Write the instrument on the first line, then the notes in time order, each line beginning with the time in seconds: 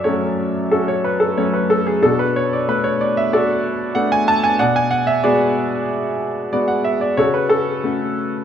grand piano
Already playing: F#2 F#4 A4 D5 E5
0.04 F#3 A3 C#4 F#4 A4 C#5
0.71 C#4 F#4 A4
0.88 C#5
1.04 B4
1.20 A4
1.37 F#3 A3 C#4 C#5
1.53 B4
1.70 A4
1.87 G#4
2.03 B2 D4 F#4 A4
2.19 B4
2.36 C#5
2.53 D5
2.68 A3 B3 D4 B4
2.84 C#5
3.01 D5
3.17 E5
3.33 F#4 A4 D5
3.95 A3 B3 D4 F#5
4.12 G#5
4.28 A5
4.44 G#5
4.59 B2 D5 F#5
4.76 G#5
4.91 F#5
5.07 E5
5.24 G#3 B3 F#4 G#4 D5
6.53 G#3 B3 F#4 D5
6.68 F#5
6.84 E5
7.01 D5
7.17 C#3 F#4 A4 C#5
7.34 B4
7.49 C#4 F#4 A4
7.84 A3 C#4 F#4